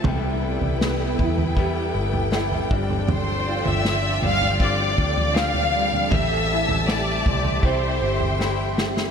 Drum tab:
SD |----o-------o---|----o-------o---|----o-------o-oo|
FT |o--o--oo---o-o-o|o--o--oo---o-o-o|o--o--oo---o----|
BD |o-----o-o-----o-|--------o-o-----|o-----o-o-------|